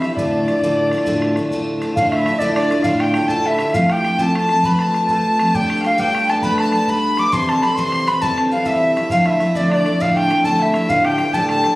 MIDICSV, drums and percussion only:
0, 0, Header, 1, 2, 480
1, 0, Start_track
1, 0, Tempo, 297767
1, 274, Time_signature, 12, 3, 24, 8
1, 18949, End_track
2, 0, Start_track
2, 0, Title_t, "Bodhran"
2, 33, Note_on_c, 9, 64, 59
2, 194, Note_off_c, 9, 64, 0
2, 269, Note_on_c, 9, 64, 93
2, 430, Note_off_c, 9, 64, 0
2, 534, Note_on_c, 9, 64, 28
2, 695, Note_off_c, 9, 64, 0
2, 775, Note_on_c, 9, 64, 49
2, 936, Note_off_c, 9, 64, 0
2, 995, Note_on_c, 9, 64, 74
2, 1156, Note_off_c, 9, 64, 0
2, 1261, Note_on_c, 9, 64, 23
2, 1422, Note_off_c, 9, 64, 0
2, 1475, Note_on_c, 9, 64, 53
2, 1580, Note_off_c, 9, 64, 0
2, 1580, Note_on_c, 9, 64, 47
2, 1710, Note_off_c, 9, 64, 0
2, 1710, Note_on_c, 9, 64, 75
2, 1872, Note_off_c, 9, 64, 0
2, 1968, Note_on_c, 9, 64, 59
2, 2129, Note_off_c, 9, 64, 0
2, 2192, Note_on_c, 9, 64, 56
2, 2353, Note_off_c, 9, 64, 0
2, 2430, Note_on_c, 9, 64, 69
2, 2591, Note_off_c, 9, 64, 0
2, 2677, Note_on_c, 9, 64, 23
2, 2838, Note_off_c, 9, 64, 0
2, 2929, Note_on_c, 9, 64, 57
2, 3091, Note_off_c, 9, 64, 0
2, 3171, Note_on_c, 9, 64, 112
2, 3332, Note_off_c, 9, 64, 0
2, 3419, Note_on_c, 9, 64, 80
2, 3580, Note_off_c, 9, 64, 0
2, 3642, Note_on_c, 9, 64, 68
2, 3804, Note_off_c, 9, 64, 0
2, 3879, Note_on_c, 9, 64, 91
2, 4040, Note_off_c, 9, 64, 0
2, 4129, Note_on_c, 9, 64, 73
2, 4290, Note_off_c, 9, 64, 0
2, 4369, Note_on_c, 9, 64, 60
2, 4479, Note_off_c, 9, 64, 0
2, 4479, Note_on_c, 9, 64, 28
2, 4578, Note_off_c, 9, 64, 0
2, 4578, Note_on_c, 9, 64, 90
2, 4740, Note_off_c, 9, 64, 0
2, 4838, Note_on_c, 9, 64, 83
2, 4999, Note_off_c, 9, 64, 0
2, 5061, Note_on_c, 9, 64, 75
2, 5222, Note_off_c, 9, 64, 0
2, 5297, Note_on_c, 9, 64, 90
2, 5458, Note_off_c, 9, 64, 0
2, 5545, Note_on_c, 9, 64, 30
2, 5706, Note_off_c, 9, 64, 0
2, 5781, Note_on_c, 9, 64, 68
2, 5942, Note_off_c, 9, 64, 0
2, 6032, Note_on_c, 9, 64, 110
2, 6193, Note_off_c, 9, 64, 0
2, 6280, Note_on_c, 9, 64, 82
2, 6441, Note_off_c, 9, 64, 0
2, 6521, Note_on_c, 9, 64, 62
2, 6682, Note_off_c, 9, 64, 0
2, 6744, Note_on_c, 9, 64, 91
2, 6905, Note_off_c, 9, 64, 0
2, 7020, Note_on_c, 9, 64, 74
2, 7181, Note_off_c, 9, 64, 0
2, 7239, Note_on_c, 9, 64, 58
2, 7356, Note_off_c, 9, 64, 0
2, 7356, Note_on_c, 9, 64, 24
2, 7467, Note_off_c, 9, 64, 0
2, 7467, Note_on_c, 9, 64, 90
2, 7629, Note_off_c, 9, 64, 0
2, 7719, Note_on_c, 9, 64, 65
2, 7880, Note_off_c, 9, 64, 0
2, 7970, Note_on_c, 9, 64, 58
2, 8131, Note_off_c, 9, 64, 0
2, 8195, Note_on_c, 9, 64, 80
2, 8357, Note_off_c, 9, 64, 0
2, 8457, Note_on_c, 9, 64, 30
2, 8618, Note_off_c, 9, 64, 0
2, 8696, Note_on_c, 9, 64, 68
2, 8857, Note_off_c, 9, 64, 0
2, 8936, Note_on_c, 9, 64, 102
2, 9097, Note_off_c, 9, 64, 0
2, 9186, Note_on_c, 9, 64, 71
2, 9348, Note_off_c, 9, 64, 0
2, 9423, Note_on_c, 9, 64, 56
2, 9585, Note_off_c, 9, 64, 0
2, 9659, Note_on_c, 9, 64, 76
2, 9820, Note_off_c, 9, 64, 0
2, 9910, Note_on_c, 9, 64, 65
2, 10071, Note_off_c, 9, 64, 0
2, 10151, Note_on_c, 9, 64, 61
2, 10258, Note_off_c, 9, 64, 0
2, 10258, Note_on_c, 9, 64, 26
2, 10353, Note_off_c, 9, 64, 0
2, 10353, Note_on_c, 9, 64, 77
2, 10514, Note_off_c, 9, 64, 0
2, 10607, Note_on_c, 9, 64, 69
2, 10768, Note_off_c, 9, 64, 0
2, 10839, Note_on_c, 9, 64, 60
2, 11000, Note_off_c, 9, 64, 0
2, 11085, Note_on_c, 9, 64, 72
2, 11246, Note_off_c, 9, 64, 0
2, 11343, Note_on_c, 9, 64, 30
2, 11504, Note_off_c, 9, 64, 0
2, 11563, Note_on_c, 9, 64, 61
2, 11725, Note_off_c, 9, 64, 0
2, 11810, Note_on_c, 9, 64, 100
2, 11971, Note_off_c, 9, 64, 0
2, 12070, Note_on_c, 9, 64, 68
2, 12231, Note_off_c, 9, 64, 0
2, 12305, Note_on_c, 9, 64, 55
2, 12466, Note_off_c, 9, 64, 0
2, 12539, Note_on_c, 9, 64, 75
2, 12700, Note_off_c, 9, 64, 0
2, 12771, Note_on_c, 9, 64, 62
2, 12933, Note_off_c, 9, 64, 0
2, 13019, Note_on_c, 9, 64, 58
2, 13148, Note_off_c, 9, 64, 0
2, 13148, Note_on_c, 9, 64, 24
2, 13257, Note_off_c, 9, 64, 0
2, 13257, Note_on_c, 9, 64, 88
2, 13418, Note_off_c, 9, 64, 0
2, 13505, Note_on_c, 9, 64, 58
2, 13666, Note_off_c, 9, 64, 0
2, 13954, Note_on_c, 9, 64, 80
2, 14115, Note_off_c, 9, 64, 0
2, 14229, Note_on_c, 9, 64, 28
2, 14390, Note_off_c, 9, 64, 0
2, 14460, Note_on_c, 9, 64, 59
2, 14621, Note_off_c, 9, 64, 0
2, 14663, Note_on_c, 9, 64, 96
2, 14824, Note_off_c, 9, 64, 0
2, 14921, Note_on_c, 9, 64, 69
2, 15083, Note_off_c, 9, 64, 0
2, 15158, Note_on_c, 9, 64, 61
2, 15320, Note_off_c, 9, 64, 0
2, 15396, Note_on_c, 9, 64, 80
2, 15558, Note_off_c, 9, 64, 0
2, 15662, Note_on_c, 9, 64, 68
2, 15823, Note_off_c, 9, 64, 0
2, 15889, Note_on_c, 9, 64, 52
2, 16019, Note_off_c, 9, 64, 0
2, 16019, Note_on_c, 9, 64, 23
2, 16143, Note_off_c, 9, 64, 0
2, 16143, Note_on_c, 9, 64, 84
2, 16304, Note_off_c, 9, 64, 0
2, 16395, Note_on_c, 9, 64, 59
2, 16556, Note_off_c, 9, 64, 0
2, 16617, Note_on_c, 9, 64, 61
2, 16778, Note_off_c, 9, 64, 0
2, 16831, Note_on_c, 9, 64, 76
2, 16992, Note_off_c, 9, 64, 0
2, 17089, Note_on_c, 9, 64, 28
2, 17251, Note_off_c, 9, 64, 0
2, 17313, Note_on_c, 9, 64, 67
2, 17474, Note_off_c, 9, 64, 0
2, 17563, Note_on_c, 9, 64, 94
2, 17724, Note_off_c, 9, 64, 0
2, 17808, Note_on_c, 9, 64, 67
2, 17969, Note_off_c, 9, 64, 0
2, 18026, Note_on_c, 9, 64, 65
2, 18187, Note_off_c, 9, 64, 0
2, 18266, Note_on_c, 9, 64, 85
2, 18427, Note_off_c, 9, 64, 0
2, 18521, Note_on_c, 9, 64, 58
2, 18683, Note_off_c, 9, 64, 0
2, 18763, Note_on_c, 9, 64, 55
2, 18877, Note_off_c, 9, 64, 0
2, 18877, Note_on_c, 9, 64, 24
2, 18949, Note_off_c, 9, 64, 0
2, 18949, End_track
0, 0, End_of_file